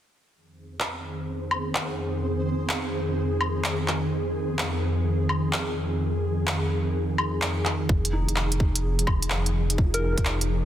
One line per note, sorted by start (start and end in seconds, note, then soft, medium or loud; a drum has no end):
0.34 7.85 F2 medium
0.34 7.86 D#3 medium
0.34 7.91 C4 medium
0.34 7.85 G#4 medium
0.34 7.91 C5 medium
0.80 clap medium
1.51 low woodblock medium
1.75 clap medium
2.69 clap loud
3.41 low woodblock medium
3.64 clap loud
3.88 clap medium
4.59 clap loud
5.29 low woodblock medium
5.53 clap medium
6.47 clap loud
7.18 low woodblock medium
7.42 clap loud
7.65 clap medium
7.89 10.65 F1 medium
7.89 10.65 F3 medium
7.89 10.65 D#4 medium
7.89 10.65 G#4 medium
7.89 kick loud
8.05 closed hi-hat soft
8.13 9.75 D#4 medium
8.29 closed hi-hat medium
8.36 clap loud
8.52 closed hi-hat soft
8.60 kick medium
8.76 closed hi-hat medium
8.99 closed hi-hat soft
9.07 kick loud
9.07 low woodblock medium
9.22 closed hi-hat medium
9.30 clap loud
9.46 closed hi-hat soft
9.70 closed hi-hat medium
9.78 10.65 F4 soft
9.78 kick loud
9.94 10.19 A#4 medium
9.94 closed hi-hat soft
9.99 10.65 G#4 medium
10.12 10.65 A#4 medium
10.18 kick loud
10.18 closed hi-hat medium
10.25 clap loud
10.41 closed hi-hat soft